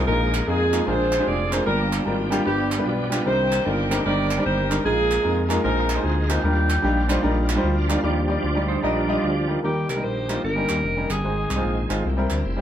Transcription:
0.07 A#1 A#2 F3 G#3 A#3 D4 D#4 F4 G#4 A#4
0.12 D#4
0.34 clap
0.47 F2 G#3 A#3 D#4 F4 G#4
0.72 G#3 A#3 D#4 F4 A#4, clap
0.86 A#1 A#2 F3 G#3 A#3 C4 D4 F4 G#4 A#4 C5
1.12 clap
1.19 G#3 C4 D4 F4 G4
1.27 F1 D5
1.52 G#3 C4 D4 F4 A#4 C5, clap
1.66 G1 G2 F3 G3 A#3 D4 F4 G4 A#4
1.93 clap
2.05 G#1 G3 A#3 D4 F4 A#4
2.30 G3 A#3 D4 F4 G4, clap
2.44 G1 G2 F3 G3 B3 D4 F4 G4 B4
2.72 clap
2.78 G3 B3 D4 F4 B4
2.86 B1 D4 F4 B4
3.10 G3 B3 D4 F4 G4, clap
3.24 C2 C3 D#3 G3 A#3 C4 D4 D#4 G4 A#4 C5 D5
3.52 clap
3.65 G1 G3 C4 D4 D#4 F4 A#4
3.90 G3 C4 D4 D#4 A#4, clap
4.05 G1 G3 C4 D4 D#4 G4 A#4 D5
4.31 clap
4.37 G3 C4 D4 D#4 G4
4.45 G1 D#4 G4 C5
4.69 G3 C4 D4 D#4 A#4, clap
4.84 A#1 A#2 F3 G#3 A#3 D#4 F4 G#4 A#4
5.11 clap
5.23 F2 G#3 A#3 D#4 F4 A#4
5.49 G#3 A#3 D#4 F4 A#4, clap
5.63 A#1 A#2 G#3 A#3 C4 D#4 F4 A#4
5.90 clap
5.95 G#3 C4 D#4 F4 C5
6.04 D2 G#4
6.28 G#3 A#3 C4 D4 D#4 F4 G4 A#4, clap
6.43 D#2 D#3 F3 G3 A#3 D4 D#4 F4 A#4
6.49 F4
6.70 clap
6.82 A#1 G3 D4 D#4 F4 G4
7.08 G3 D4 D#4 F4 C5, clap
7.23 A#1 G3 D4 D#4 F4 A#4
7.49 clap
7.55 G3 D4 D#4 F4 C5
7.64 D2
7.89 G3 D4 D#4 F4 A#4, clap
8.03 D#2 D#3 F3 G3 D4 D#4 F4 G4 D5
8.28 G3 D#4 F4 D5
8.43 D2
8.55 G3 D#4 F4 D5
8.68 D#4 C5
8.82 A#1 G3 D4 D#4 F4 A#4 D#5
9.08 G3 D#4 F4 D#5
9.23 D2
9.48 G3 D#4 F4 A#4
9.63 D#2 D#3 G3 A#3 D#4 G4 A#4
9.89 C2 A#4, clap
9.95 G3 A#3 D#4 A#4
10.04 A#1 C5
10.28 G3 A#3 D#4 F4, clap
10.44 G1 G2 D#3 A#3 C#4 F#4 A#4
10.50 G4
10.56 G3 C#4 D#4 A#4
10.69 D#2, clap
10.84 F1
10.96 G3 C#4 D#4 A#4
11.10 G1 G#4, clap
11.24 G#1 G#2 D#3 G#3 C4 D#4 G#4 C5
11.50 C2, clap
11.56 G#3 C4 D#4 F4
11.65 A#1
11.89 G#1 G#3 C4 D#4 F4, clap
12.04 C2 C3 E3 G3 A#3 C4 E4 F4
12.10 G4
12.17 G3 C4 E4 A#4
12.30 D2 D4 A#4 A#5, clap
12.45 F1 E4 C5 G5
12.56 G3 C4 E4

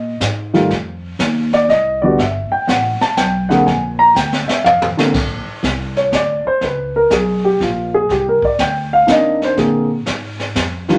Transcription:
Already playing: A#2 D#5
0.20 G#2, kick, snare, hi-hat pedal
0.54 D#3 G3 A3 F4, snare
0.70 F2, brush sweep, kick, snare
1.19 D#2, kick, snare, hi-hat pedal
1.53 D5, snare
1.69 C2 D#5, kick, snare
2.02 D3 G3 B3 F#4 D5
2.18 G1 E5, brush sweep, kick, snare
2.51 G5, muted upright bass stroke
2.67 A1 F#5, kick, snare, hi-hat pedal
3.00 A5, muted upright bass stroke, snare
3.17 B1 G5, kick, snare, hi-hat pedal
3.49 D3 A#3 C4 G#4 F#5, snare
3.66 A#1 G#5, brush sweep, kick, snare
3.99 A#5
4.15 D2 G5, snare, hi-hat pedal
4.33 snare
4.48 E5, muted upright bass stroke, snare
4.64 F2 F5, mid tom
4.82 mid tom
4.97 D3 A#3 C4 A4, muted upright bass stroke, snare
5.14 A#1, brush sweep, kick, snare, crash
5.46 muted upright bass stroke
5.63 C2, kick, snare, hi-hat pedal
5.96 C#5, snare
6.12 D2 D5, kick, snare, hi-hat pedal
6.45 C5, muted upright bass stroke
6.61 C#2 B4, brush sweep, kick, snare
6.96 A#4
7.10 B1 G#4, kick, snare, hi-hat pedal
7.45 G4
7.60 A#1 F4, kick, snare
7.94 G#4
8.09 C2 G4, brush sweep, kick, snare
8.29 A#4
8.42 D5, muted upright bass stroke, kick
8.59 D2 G5, kick, snare, hi-hat pedal
8.93 F5
9.07 D#2 A#3 C4 D4 D#4, kick, snare, hi-hat pedal
9.11 D#5
9.42 C5, snare
9.57 A#2 D3 A#3 C4 G#4, brush sweep, kick, snare
10.06 G#2, kick, snare, hi-hat pedal
10.40 snare
10.55 F2, kick, snare, hi-hat pedal
10.88 D#3 G3 D4 F4, snare

